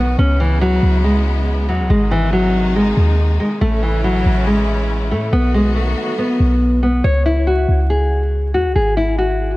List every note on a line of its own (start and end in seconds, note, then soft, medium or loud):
0.00 0.16 B1 loud
0.00 0.17 D#3 medium
0.00 0.17 F#3 medium
0.00 0.17 B3 medium
0.00 0.17 F#4 medium
0.18 0.80 C#2 loud
0.18 1.88 C#3 medium
0.18 3.58 G#3 medium
0.18 1.88 B3 medium
0.18 0.38 C#4 loud
0.18 1.88 E4 medium
0.40 0.60 E3 medium
0.61 1.02 F#3 medium
0.83 1.70 C#2 loud
1.04 1.65 G#3 medium
1.68 1.81 E2 loud
1.68 1.88 F#3 medium
1.80 1.89 C#2 loud
1.90 2.93 G#1 loud
1.90 3.60 C3 medium
1.90 3.60 D#3 medium
1.90 2.10 G#3 medium
1.90 3.60 D#4 medium
2.11 2.31 E3 medium
2.33 2.73 F#3 medium
2.76 3.36 G#3 medium
2.97 3.38 D#2 loud
3.40 3.60 G#3 medium
3.61 4.23 A1 loud
3.61 5.31 C#3 medium
3.61 5.31 E3 medium
3.61 3.81 A3 loud
3.61 5.31 C#4 medium
3.61 5.31 E4 medium
3.83 4.02 E3 medium
4.04 4.44 F#3 medium
4.25 5.13 A1 loud
4.47 5.07 G#3 medium
5.11 5.32 A2 loud
5.11 5.31 A3 medium
5.33 5.94 B1 loud
5.33 7.02 D#3 medium
5.33 7.02 F#3 medium
5.33 5.52 B3 medium
5.33 7.02 B3 medium
5.33 7.02 F#4 medium
5.54 5.74 G#3 medium
5.76 6.16 A3 medium
6.18 6.79 B3 medium
6.40 7.02 B1 loud
6.83 7.03 B3 medium
7.04 7.66 C#2 loud
7.04 7.24 C#5 loud
7.26 7.45 E4 medium
7.47 7.87 F#4 medium
7.68 8.56 C#2 loud
7.90 8.50 G#4 medium
8.54 8.67 E2 loud
8.54 8.74 F#4 medium
8.65 8.75 C#2 loud
8.75 9.57 G#1 loud
8.75 8.95 G#4 medium
8.97 9.17 E4 medium
9.18 9.57 F#4 medium